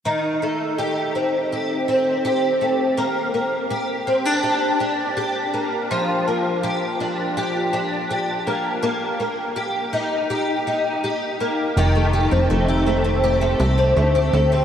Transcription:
X:1
M:4/4
L:1/16
Q:1/4=82
K:Fmix
V:1 name="Twelve-string acoustic guitar"
E,2 A,2 G2 C2 G2 C2 G2 A,2 | B,2 B,2 G2 C D G2 D2 G2 B,2 | F,2 B,2 G2 D2 G2 D2 G2 B,2 | B,2 B,2 G2 E2 G2 E2 G2 B,2 |
[E,G] A, G C A, G A, C G A, G C A, G A, C |]
V:2 name="Analog synth bass" clef=bass
z16 | z16 | z16 | z16 |
F,,,3 F,,, F,,,6 C,,2 D,,2 D,,2 |]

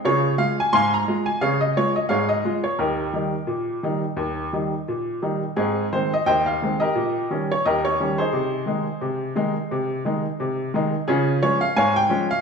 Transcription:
X:1
M:2/4
L:1/16
Q:"Swing 16ths" 1/4=87
K:Ab
V:1 name="Upright piano"
[FAd]2 f a [fac'] b2 a | [Adf] e d e [Adf] e2 d | [EGB]8- | [EGB]4 z4 |
[CEA]2 c e [ceg] f2 [GBe]- | [GBe]3 d [GBe] d2 [EAc]- | [EAc]8- | [EAc]6 z2 |
[DFA]2 d f [dfa] g2 f |]
V:2 name="Upright piano" clef=bass
D,2 [A,F]2 A,,2 [A,F]2 | D,2 [A,F]2 A,,2 [A,F]2 | E,,2 [E,G,E]2 B,,2 [E,G,E]2 | E,,2 [E,G,E]2 B,,2 [E,G,E]2 |
A,,2 [E,A,C]2 E,,2 [E,A,C]2 | B,,2 [E,G,D]2 E,,2 [E,G,D]2 | C,2 [E,A,E]2 C,2 [E,A,E]2 | C,2 [E,A,E]2 C,2 [E,A,E]2 |
D,2 [F,A,D]2 A,,2 [F,A,D]2 |]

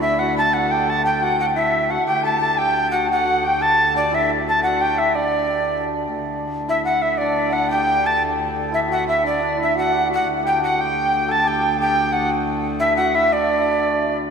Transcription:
X:1
M:6/8
L:1/16
Q:3/8=117
K:Dmix
V:1 name="Recorder"
e2 f2 a2 f2 g2 a2 | g2 f2 f2 e4 f2 | g2 a2 a2 g4 f2 | f4 g2 a4 d2 |
e2 z2 a2 f2 g2 e2 | d8 z4 | z6 e2 f2 e2 | d4 f2 g4 a2 |
z6 e2 f2 e2 | d4 e2 f4 f2 | z2 g2 f2 g6 | a2 g4 g4 f2 |
z6 e2 f2 e2 | d8- d2 z2 |]
V:2 name="Recorder"
e3- e/2 b/2 a2 f6 | g6 e4 f2 | g2 a4 g6 | f4 g2 a6 |
e2 z4 f2 g2 e2 | d8 z4 | z6 e2 f2 e2 | d2 e2 f2 g4 a2 |
z6 e4 e2 | d2 d2 e2 f4 f2 | z2 g2 f2 g6 | a2 g4 g4 f2 |
z6 e6 | d8- d2 z2 |]
V:3 name="Hammered dulcimer"
E2 F2 A2 F2 G2 A2 | G2 F2 F2 E4 F2 | G2 A2 A2 G4 F2 | F2 F2 G2 A4 D2 |
E2 z2 A2 F2 G2 E2 | D8 z4 | z6 E4 E2 | D6 G4 A2 |
z6 E2 F2 E2 | D2 D2 E2 F2 G2 F2 | z2 G2 F2 G6 | A2 G4 G4 F2 |
z6 E2 F2 E2 | D8- D2 z2 |]
V:4 name="Viola da gamba" clef=bass
D,,12- | D,,12 | D,,12- | D,,12- |
D,,12- | D,,12 | D,,12- | D,,12- |
D,,12- | D,,12 | D,,12- | D,,12- |
D,,12- | D,,12 |]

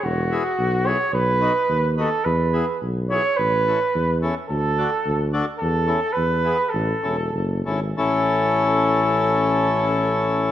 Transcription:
X:1
M:2/4
L:1/8
Q:1/4=106
K:A
V:1 name="Flugelhorn"
F3 c | B3 A | B2 z c | B3 z |
A3 z | A2 B2 | A3 z | A4- |
A4 |]
V:2 name="Accordion"
z [B,EG] z [B,EG] | z [B,^DF] z [B,DF] | z [B,EG] z [B,EG] | z [CEA] z [CEA] |
z [DFA] z [DFA] | z [CEA] z [B,EG] | z [CEA] z [CEA] | [CEA]4- |
[CEA]4 |]
V:3 name="Tuba" clef=bass
E,,,2 B,,,2 | B,,,2 ^D,,2 | E,,2 B,,,2 | A,,,2 E,,2 |
D,,2 D,,2 | E,,2 E,,2 | A,,, E,,, F,,, G,,, | A,,,4- |
A,,,4 |]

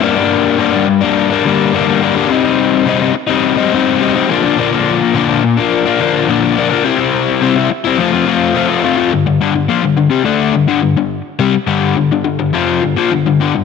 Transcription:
X:1
M:4/4
L:1/16
Q:1/4=106
K:Gm
V:1 name="Overdriven electric guitar" clef=bass
[G,,D,G,B,D] [G,B,D]3 [G,,D,G,B,D] [G,B,D]2 [G,B,D]2 [G,B,D] [D,G,B,D]2 [G,,D,G,B,D] [G,B,D] [D,G,B,D] [G,B,D] | [C,G,CE] [G,CE]3 [C,G,CE] [G,CE]2 [G,CE]2 [G,CE] [C,G,CE]2 [C,G,CE] [G,CE] [B,,D,F,B,D] [F,B,D] | [B,,D,F,B,D] [F,B,D]3 [B,,D,F,B,D] [F,B,D]2 [F,B,D]2 [F,B,D] [D,F,B,D]2 [B,,D,F,B,D] [F,B,D] [D,F,B,D] [F,B,D] | [C,G,C=E] [G,CE]3 [C,G,CE] [G,CE]2 [G,CE] [F,A,CF] [A,CF] [F,A,CF]2 [F,A,CF] [A,CF] [F,A,CF] [A,CF] |
[G,,D,] [G,,D,] [G,,D,] [G,,D,] [B,,F,] [G,,D,] [G,,D,] [C,G,] [D,A,D]2 [G,,D,] [G,,D,] [G,,D,] [G,,D,]2 z | [C,G,] z [G,,D,G,]2 [G,,D,] [G,,D,] [G,,D,] [G,,D,] [F,,C,F,]2 [G,,D,] [B,,F,] [G,,D,] [G,,D,] [G,,D,] [G,,D,] |]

